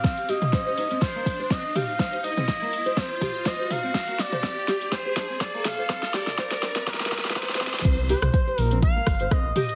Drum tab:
HH |x-x-o-x-x---o-x-x---o---x---o---|x-x-o-x-x---o-x-x---o---x---o---|x-x-o-x-x---o-x-x---o---x---o---|x-x-o-x-x-x-o-x-x---o---x---o-x-|
SH |x---x-x-x---x-x-x---x-x-x---x-x-|x---x-x-x---x-x-x---x-x-x---x-x-|x---x-x-x---x-x-x---x-x-x---x-x-|x---x-x-x---x-x-x---x-x-x---x-x-|
SD |o-------o-------o-------o-------|o-------o-------o-------o-------|o---o---o---o---o---o---o---o---|o-o-o-o-o-o-o-o-oooooooooooooooo|
T2 |------o---------------------o---|------o-------------o-------o---|------o---------------------o---|------o-------------o-------o---|
BD |o-------o-------o---o---o-------|o-------o-------o---o---o-------|o-------o-------o---o---o-------|o-------o-------o---o---o-------|

HH |x---o-x-x---o-x-x---o-x-x---o-x-|
SH |x---x-x-x---x-x-x---x-x-x---x-x-|
SD |------r-------------r---r-------|
T2 |------o---------------------o---|
BD |o-------o-------o---o---o-------|